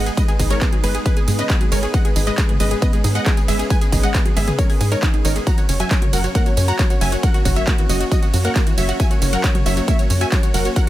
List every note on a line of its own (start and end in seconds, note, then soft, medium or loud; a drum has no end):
0.00 0.10 G#1 medium
0.00 5.43 G#3 medium
0.00 5.43 B3 medium
0.00 1.90 D#4 medium
0.00 5.43 B4 medium
0.00 impact medium
0.06 0.14 G#4 medium
0.06 0.09 G#4 medium
0.06 closed hi-hat medium
0.06 tambourine soft
0.17 0.22 G#3 medium
0.17 0.25 B4 medium
0.17 0.25 D#5 medium
0.17 0.25 D#5 loud
0.17 kick loud
0.17 closed hi-hat medium
0.17 ride medium
0.17 tambourine soft
0.28 0.36 G#4 medium
0.28 0.33 G#4 loud
0.28 closed hi-hat medium
0.28 tambourine soft
0.39 0.54 G#1 loud
0.39 0.44 D#4 medium
0.39 0.47 G#4 medium
0.39 kick medium
0.39 open hi-hat loud
0.39 ride medium
0.39 tambourine medium
0.50 0.57 G#3 medium
0.50 0.58 A#4 medium
0.50 0.58 C#5 medium
0.50 0.59 C#5 medium
0.50 closed hi-hat medium
0.50 tambourine soft
0.61 0.68 B3 loud
0.61 0.70 G#4 medium
0.61 kick loud
0.61 clap loud
0.61 closed hi-hat medium
0.61 ride medium
0.61 tambourine soft
0.72 0.75 F#3 medium
0.72 0.81 G#4 medium
0.72 closed hi-hat medium
0.84 0.99 G#1 loud
0.84 0.90 G#3 loud
0.84 0.92 G#4 medium
0.84 0.92 B4 medium
0.84 open hi-hat loud
0.84 ride medium
0.84 tambourine medium
0.95 0.97 G#4 medium
0.95 1.03 G#4 medium
0.95 closed hi-hat medium
0.95 tambourine soft
1.06 1.12 G#3 medium
1.06 1.14 G#4 medium
1.06 1.14 B4 medium
1.06 1.14 B4 loud
1.06 kick loud
1.06 closed hi-hat medium
1.06 ride medium
1.06 tambourine soft
1.17 1.21 G#4 loud
1.17 1.25 G#4 medium
1.17 closed hi-hat medium
1.17 tambourine soft
1.28 1.43 G#2 medium
1.28 1.32 G#3 medium
1.28 1.36 G#4 medium
1.28 open hi-hat loud
1.28 ride medium
1.28 tambourine medium
1.39 1.43 C#4 medium
1.39 1.47 B4 medium
1.39 1.47 D#5 loud
1.39 1.47 D#5 medium
1.39 closed hi-hat medium
1.39 tambourine soft
1.50 1.57 B3 loud
1.50 1.58 G#4 medium
1.50 kick loud
1.50 clap loud
1.50 closed hi-hat medium
1.50 ride medium
1.50 tambourine soft
1.61 1.64 F#3 medium
1.61 1.69 G#4 medium
1.61 closed hi-hat medium
1.61 tambourine soft
1.72 1.87 G#1 medium
1.72 1.79 G#3 loud
1.72 1.80 A#4 medium
1.72 1.80 C#5 medium
1.72 open hi-hat loud
1.72 ride medium
1.72 tambourine medium
1.83 1.86 G#4 loud
1.83 1.91 G#4 medium
1.83 closed hi-hat medium
1.83 tambourine soft
1.94 1.98 G#3 loud
1.94 5.43 C#4 medium
1.94 2.02 D#5 medium
1.94 2.02 F#5 loud
1.94 kick loud
1.94 closed hi-hat medium
1.94 ride medium
1.94 tambourine soft
2.05 2.08 G#4 medium
2.05 2.13 G#4 medium
2.05 closed hi-hat medium
2.05 tambourine soft
2.16 2.31 G#1 loud
2.16 2.21 D#4 medium
2.16 2.24 G#4 medium
2.16 open hi-hat loud
2.16 ride medium
2.16 tambourine medium
2.27 2.32 G#3 loud
2.27 2.35 B4 medium
2.27 2.35 D#5 loud
2.27 2.35 D#5 medium
2.27 closed hi-hat medium
2.27 tambourine soft
2.38 2.43 G#3 medium
2.38 2.46 G#4 medium
2.38 kick loud
2.38 clap loud
2.38 closed hi-hat medium
2.38 ride medium
2.38 tambourine soft
2.49 2.52 G#2 medium
2.49 2.57 G#4 medium
2.49 closed hi-hat medium
2.49 mid tom medium
2.60 2.75 G#1 loud
2.60 2.67 G#3 loud
2.60 2.68 B4 medium
2.60 2.68 D#5 medium
2.60 open hi-hat loud
2.60 ride medium
2.60 tambourine medium
2.71 2.76 G#3 medium
2.71 2.79 G#4 medium
2.71 closed hi-hat medium
2.71 tambourine soft
2.82 2.87 B3 loud
2.82 2.90 B4 medium
2.82 2.90 D#5 medium
2.82 kick loud
2.82 closed hi-hat medium
2.82 ride medium
2.82 tambourine soft
2.93 2.98 G#3 medium
2.93 3.01 G#4 medium
2.93 closed hi-hat medium
2.93 tambourine soft
3.04 3.19 G#2 medium
3.04 3.09 D#4 medium
3.04 3.12 G#4 medium
3.04 open hi-hat loud
3.04 ride medium
3.04 tambourine medium
3.15 3.22 G#4 medium
3.15 3.23 D#5 medium
3.15 3.23 F#5 loud
3.15 3.23 F#5 medium
3.15 closed hi-hat medium
3.15 tambourine soft
3.26 3.29 G#3 medium
3.26 3.34 G#4 medium
3.26 kick loud
3.26 clap loud
3.26 closed hi-hat medium
3.26 ride medium
3.26 tambourine soft
3.37 3.42 G#4 medium
3.37 3.45 G#4 medium
3.37 closed hi-hat medium
3.37 tambourine soft
3.48 3.63 G#1 medium
3.48 3.55 G#3 loud
3.48 3.56 G#4 medium
3.48 3.56 E5 medium
3.48 open hi-hat loud
3.48 ride medium
3.48 tambourine medium
3.59 3.62 G#4 medium
3.59 3.67 G#4 medium
3.59 closed hi-hat medium
3.59 tambourine soft
3.70 3.75 G#3 medium
3.70 3.78 B4 medium
3.70 3.78 G#5 loud
3.70 kick loud
3.70 closed hi-hat medium
3.70 ride medium
3.70 tambourine soft
3.81 3.89 G#4 medium
3.81 3.86 G#4 loud
3.81 closed hi-hat medium
3.81 tambourine soft
3.92 4.07 G#1 loud
3.92 3.97 D#4 medium
3.92 4.00 G#4 medium
3.92 kick medium
3.92 open hi-hat loud
3.92 ride medium
3.92 tambourine medium
4.03 4.10 G#3 medium
4.03 4.11 D#5 medium
4.03 4.11 F#5 medium
4.03 closed hi-hat medium
4.03 tambourine soft
4.14 4.21 B3 loud
4.14 4.22 G#4 medium
4.14 kick loud
4.14 clap loud
4.14 closed hi-hat medium
4.14 ride medium
4.14 tambourine soft
4.25 4.28 F#3 medium
4.25 4.33 G#4 medium
4.25 closed hi-hat medium
4.37 4.52 G#1 loud
4.37 4.43 G#3 loud
4.37 4.45 G#4 medium
4.37 4.45 E5 medium
4.37 open hi-hat loud
4.37 ride medium
4.37 tambourine medium
4.48 4.56 G#4 medium
4.48 4.50 G#4 medium
4.48 4.56 G#4 medium
4.48 closed hi-hat medium
4.48 mid tom medium
4.48 tambourine soft
4.58 4.65 G#3 medium
4.58 4.67 A#4 medium
4.58 4.67 C#5 medium
4.58 4.67 C#5 loud
4.58 kick loud
4.58 closed hi-hat medium
4.58 ride medium
4.58 tambourine soft
4.70 4.74 G#4 loud
4.70 4.78 G#4 medium
4.70 open hi-hat medium
4.70 tambourine soft
4.81 4.96 G#2 medium
4.81 4.89 G#4 medium
4.81 4.83 G#4 loud
4.81 4.89 G#4 medium
4.81 open hi-hat loud
4.81 ride medium
4.81 tambourine medium
4.92 4.94 D#4 medium
4.92 5.00 A#4 medium
4.92 5.00 C#5 medium
4.92 closed hi-hat medium
4.92 tambourine soft
5.03 5.07 D#4 loud
5.03 5.11 G#4 medium
5.03 kick loud
5.03 clap loud
5.03 closed hi-hat medium
5.03 ride medium
5.03 tambourine soft
5.14 5.21 D#3 medium
5.14 5.22 G#4 medium
5.14 closed hi-hat medium
5.14 tambourine soft
5.25 5.40 G#1 loud
5.25 5.29 D#4 loud
5.25 5.33 A#4 medium
5.25 5.33 C#5 medium
5.25 open hi-hat loud
5.25 ride medium
5.25 tambourine medium
5.36 5.39 G#3 medium
5.36 5.44 G#4 medium
5.36 closed hi-hat medium
5.36 tambourine soft
5.47 5.51 F#3 loud
5.47 10.89 A#3 medium
5.47 10.89 C#4 medium
5.47 10.89 F#4 medium
5.47 10.89 C#5 medium
5.47 5.55 F#5 medium
5.47 5.55 A#5 loud
5.47 kick loud
5.47 closed hi-hat medium
5.47 ride medium
5.47 tambourine soft
5.58 5.61 F#4 medium
5.58 5.66 C#5 medium
5.58 closed hi-hat medium
5.58 tambourine soft
5.69 5.84 F#1 loud
5.69 5.73 C#4 medium
5.69 5.77 C#5 medium
5.69 open hi-hat loud
5.69 ride medium
5.69 tambourine medium
5.80 5.85 F#3 loud
5.80 5.88 E5 medium
5.80 5.88 G#5 medium
5.80 closed hi-hat medium
5.80 tambourine soft
5.91 5.96 F#3 medium
5.91 5.99 C#5 medium
5.91 kick loud
5.91 clap loud
5.91 closed hi-hat medium
5.91 ride medium
5.91 tambourine soft
6.02 6.07 F#3 medium
6.02 6.10 C#5 medium
6.02 closed hi-hat medium
6.02 mid tom medium
6.13 6.28 F#1 loud
6.13 6.20 F#3 loud
6.13 6.21 A#4 medium
6.13 6.21 F#5 medium
6.13 open hi-hat loud
6.13 ride medium
6.13 tambourine medium
6.24 6.29 F#3 medium
6.24 6.32 C#5 medium
6.24 closed hi-hat medium
6.24 tambourine soft
6.35 6.40 A#3 loud
6.35 6.43 A#4 medium
6.35 6.43 F#5 medium
6.35 6.43 F#5 loud
6.35 kick loud
6.35 closed hi-hat medium
6.35 ride medium
6.35 tambourine soft
6.46 6.51 F#3 medium
6.46 6.54 C#5 medium
6.46 closed hi-hat medium
6.46 tambourine soft
6.57 6.72 F#2 medium
6.57 6.62 C#4 medium
6.57 6.65 C#5 medium
6.57 open hi-hat loud
6.57 ride medium
6.57 tambourine medium
6.68 6.75 F#4 medium
6.68 6.76 F#5 medium
6.68 6.76 A#5 loud
6.68 6.76 A#5 medium
6.68 closed hi-hat medium
6.68 tambourine soft
6.79 6.82 F#3 medium
6.79 6.87 C#5 medium
6.79 kick loud
6.79 clap loud
6.79 closed hi-hat medium
6.79 ride medium
6.79 tambourine soft
6.90 6.95 F#4 medium
6.90 6.98 C#5 medium
6.90 closed hi-hat medium
6.90 tambourine soft
7.01 7.16 F#1 medium
7.01 7.08 F#3 loud
7.01 7.09 E5 medium
7.01 7.09 G#5 medium
7.01 open hi-hat loud
7.01 ride medium
7.01 tambourine medium
7.12 7.15 F#4 medium
7.12 7.20 C#5 medium
7.12 closed hi-hat medium
7.12 tambourine soft
7.23 7.28 F#3 medium
7.23 7.31 A#4 medium
7.23 7.31 F#5 loud
7.23 kick loud
7.23 closed hi-hat medium
7.23 ride medium
7.23 tambourine soft
7.34 7.42 F#4 medium
7.34 7.39 F#4 loud
7.34 closed hi-hat medium
7.34 tambourine soft
7.45 7.60 F#1 loud
7.45 7.50 C#4 medium
7.45 7.53 F#4 medium
7.45 kick medium
7.45 open hi-hat loud
7.45 ride medium
7.45 tambourine medium
7.56 7.63 F#3 medium
7.56 7.64 C#5 medium
7.56 7.64 E5 medium
7.56 7.64 E5 loud
7.56 closed hi-hat medium
7.56 tambourine soft
7.67 7.74 A#3 loud
7.67 7.75 F#4 medium
7.67 kick loud
7.67 clap loud
7.67 closed hi-hat medium
7.67 ride medium
7.67 tambourine soft
7.78 7.81 E3 medium
7.78 7.86 F#4 medium
7.78 closed hi-hat medium
7.89 8.04 F#1 loud
7.89 7.96 F#3 loud
7.89 7.97 F#4 medium
7.89 7.97 D#5 medium
7.89 open hi-hat loud
7.89 ride medium
7.89 tambourine medium
8.00 8.03 F#4 medium
8.00 8.08 F#4 medium
8.00 8.09 F#4 medium
8.00 closed hi-hat medium
8.00 tambourine soft
8.11 8.18 F#3 medium
8.11 8.20 F#4 medium
8.11 8.19 D#5 loud
8.11 8.20 D#5 medium
8.11 kick loud
8.11 closed hi-hat medium
8.11 ride medium
8.11 tambourine soft
8.22 8.31 F#4 medium
8.22 8.27 F#4 loud
8.22 8.31 F#4 medium
8.22 closed hi-hat medium
8.22 tambourine soft
8.34 8.49 F#2 medium
8.34 8.38 F#3 medium
8.34 8.42 F#4 medium
8.34 open hi-hat loud
8.34 ride medium
8.34 tambourine medium
8.45 8.49 A#3 medium
8.45 8.53 A#4 medium
8.45 8.53 F#5 loud
8.45 8.53 F#5 medium
8.45 closed hi-hat medium
8.45 tambourine soft
8.56 8.62 A#3 loud
8.56 8.64 F#4 medium
8.56 kick loud
8.56 clap loud
8.56 closed hi-hat medium
8.56 ride medium
8.56 tambourine soft
8.67 8.69 E3 medium
8.67 8.75 F#4 medium
8.67 closed hi-hat medium
8.67 tambourine soft
8.78 8.93 F#1 medium
8.78 8.85 F#3 loud
8.78 8.86 C#5 medium
8.78 8.86 E5 medium
8.78 open hi-hat loud
8.78 ride medium
8.78 tambourine medium
8.89 8.91 F#4 loud
8.89 8.97 F#4 medium
8.89 closed hi-hat medium
8.89 tambourine soft
9.00 9.04 F#3 loud
9.00 9.08 E5 medium
9.00 9.08 G#5 loud
9.00 kick loud
9.00 closed hi-hat medium
9.00 ride medium
9.00 tambourine soft
9.11 9.14 F#4 medium
9.11 9.19 C#5 medium
9.11 closed hi-hat medium
9.11 tambourine soft
9.22 9.37 F#1 loud
9.22 9.26 C#4 medium
9.22 9.30 C#5 medium
9.22 open hi-hat loud
9.22 ride medium
9.22 tambourine medium
9.33 9.37 F#3 loud
9.33 9.41 A#4 medium
9.33 9.41 F#5 medium
9.33 closed hi-hat medium
9.33 tambourine soft
9.44 9.48 F#3 medium
9.44 9.52 C#5 medium
9.44 kick loud
9.44 clap loud
9.44 closed hi-hat medium
9.44 ride medium
9.44 tambourine soft
9.55 9.59 F#3 medium
9.55 9.63 C#5 medium
9.55 closed hi-hat medium
9.55 mid tom medium
9.66 9.81 F#1 loud
9.66 9.73 F#3 loud
9.66 9.74 C#5 medium
9.66 9.74 E5 loud
9.66 9.74 E5 medium
9.66 open hi-hat loud
9.66 ride medium
9.66 tambourine medium
9.77 9.82 F#3 medium
9.77 9.85 C#5 medium
9.77 closed hi-hat medium
9.77 tambourine soft
9.88 9.93 A#3 loud
9.88 9.96 C#5 medium
9.88 9.96 E5 medium
9.88 kick loud
9.88 closed hi-hat medium
9.88 ride medium
9.88 tambourine soft
9.99 10.04 F#3 medium
9.99 10.07 C#5 medium
9.99 closed hi-hat medium
9.99 tambourine soft
10.10 10.25 F#2 medium
10.10 10.15 C#4 medium
10.10 10.18 C#5 medium
10.10 open hi-hat loud
10.10 ride medium
10.10 tambourine medium
10.21 10.28 F#4 medium
10.21 10.29 E5 medium
10.21 10.29 G#5 loud
10.21 10.29 G#5 medium
10.21 closed hi-hat medium
10.21 tambourine soft
10.32 10.35 F#3 medium
10.32 10.40 C#5 medium
10.32 kick loud
10.32 clap loud
10.32 closed hi-hat medium
10.32 ride medium
10.32 tambourine soft
10.43 10.48 F#4 medium
10.43 10.51 C#5 medium
10.43 closed hi-hat medium
10.43 tambourine soft
10.54 10.69 F#1 medium
10.54 10.61 F#3 loud
10.54 10.62 A#4 medium
10.54 10.62 F#5 medium
10.54 open hi-hat loud
10.54 ride medium
10.54 tambourine medium
10.65 10.68 F#4 medium
10.65 10.73 C#5 medium
10.65 closed hi-hat medium
10.65 tambourine soft
10.76 10.81 F#3 medium
10.76 10.84 A#4 medium
10.76 10.84 F#5 loud
10.76 kick loud
10.76 closed hi-hat medium
10.76 ride medium
10.76 tambourine soft